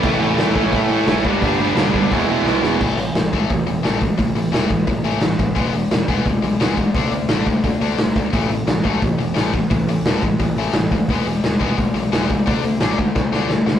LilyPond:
<<
  \new Staff \with { instrumentName = "Distorted electric guitar" } { \clef bass \time 4/4 \key a \mixolydian \tempo 4 = 174 <a, e a cis' e'>8 <a, e a cis' e'>8 <a, e a cis' e'>8 <a, e a cis' e'>8 <a, e a cis' e'>8 <a, e a cis' e'>8 <a, e a cis' e'>8 <g, d g b d'>8 | <g, d g b d'>8 <g, d g b d'>8 <g, d g b d'>8 <g, d g b d'>8 <e gis b e'>8 <e gis b e'>8 <e gis b e'>8 <e gis b e'>8 | \key e \mixolydian <a, e a>8 <a, e>8 <a, e>8 <a, e a>8 <a, e>8 <a, e>8 <a, e a>8 <a, e>8 | <a, e>8 <a, e>8 <a, e a>8 <a, e>8 <a, e>8 <a, e a>8 <a, e>8 <a, e>8 |
<e gis b>8 <e gis>8 <e gis>8 <e gis b>8 <e gis>8 <e gis>8 <e gis b>8 <e gis>8 | <d a d'>8 <d a>8 <d a d'>8 <d a>8 <d a>8 <d a d'>8 <d a>8 <d a>8 | <a, e a>8 <a, e>8 <a, e>8 <a, e a>8 <a, e>8 <a, e>8 <a, e a>8 <a, e>8 | <a, e>8 <a, e>8 <a, e a>8 <a, e>8 <a, e>8 <a, e a>8 <a, e>8 <a, e>8 |
<e gis b>8 <e gis>8 <e gis>8 <e gis b>8 <e gis>8 <e gis>8 <e gis b>8 <e gis>8 | <d a d'>8 <d a>8 <d a d'>8 <d a>8 <d a>8 <d a d'>8 <d a>8 <d a>8 | }
  \new Staff \with { instrumentName = "Distorted electric guitar" } { \clef bass \time 4/4 \key a \mixolydian <a, e a>8 <a, e a>8 <a, e a>8 <a, e a>8 <a, e a>8 <a, e a>8 <a, e a>8 <g, d g>8 | <g, d g>8 <g, d g>8 <g, d g>8 <g, d g>8 <e, b, e>8 <e, b, e>8 <e, b, e>8 <e, b, e>8 | \key e \mixolydian r1 | r1 |
r1 | r1 | r1 | r1 |
r1 | r1 | }
  \new Staff \with { instrumentName = "Overdriven electric guitar" } { \clef bass \time 4/4 \key a \mixolydian <a, e a>8 <a, e a>8 <a, e a>8 <a, e a>8 <a, e a>8 <a, e a>8 <a, e a>8 <g, d g>8 | <g, d g>8 <g, d g>8 <g, d g>8 <g, d g>8 <e, b, e>8 <e, b, e>8 <e, b, e>8 <e, b, e>8 | \key e \mixolydian r1 | r1 |
r1 | r1 | r1 | r1 |
r1 | r1 | }
  \new Staff \with { instrumentName = "Picked electric bass" } { \clef bass \time 4/4 \key a \mixolydian a,,8 a,,8 e,8 a,,8 a,4 a,,8 g,,8 | g,,4 e,,8 g,,8 e,,8 e,,8 b,,8 e,,8 | \key e \mixolydian a,,8 a,,8 a,,8 a,,8 a,,8 e,,8 a,,4 | a,,8 a,,8 e,,8 a,,8 a,,8 a,,8 a,,8 a,,8 |
e,,8 e,,8 e,,8 e,,8 e,,8 b,,8 e,,4 | d,8 d,8 a,,8 d,8 d,8 d,8 d,8 d,8 | a,,8 a,,8 a,,8 a,,8 a,,8 e,,8 a,,4 | a,,8 a,,8 e,,8 a,,8 a,,8 a,,8 a,,8 d,8 |
e,,8 e,,8 e,,8 e,,8 e,,8 b,,8 e,,4 | d,8 d,8 a,,8 d,8 d,8 d,8 d,8 d,8 | }
  \new DrumStaff \with { instrumentName = "Drums" } \drummode { \time 4/4 <cymc bd>4 <hho sn>8 bd8 <hho bd>4 <hho sn>8 bd8 | <hho bd>4 <hho sn>8 bd8 <hho bd>4 sn8 sn8 | <cymc bd>8 hho8 <hho sn>8 <hho bd>8 <hho bd>8 hho8 <hho sn>8 <hho bd>8 | <hho bd>8 hho8 <hho sn>8 <hho bd>8 <hho bd>8 hho8 <hho sn>8 <hho bd>8 |
<hho bd>8 hho8 <hho sn>8 <hho bd>8 <hho bd>8 hho8 <hho sn>8 <hho bd>8 | <hho bd>8 hho8 <hho sn>8 <hho bd>8 <hho bd>8 hho8 <hho sn>8 <hho bd>8 | <hho bd>8 hho8 <hho sn>8 <hho bd>8 <hho bd>8 hho8 <hho sn>8 <hho bd>8 | <hho bd>8 hho8 <hho sn>8 <hho bd>8 <hho bd>8 hho8 <hho sn>8 <hho bd>8 |
<hho bd>8 hho8 <hho sn>8 <hho bd>8 <hho bd>8 hho8 <hho sn>8 <hho bd>8 | <hho bd>8 hho8 <hho sn>8 <hho bd>8 <bd sn>8 sn8 sn8 sn8 | }
>>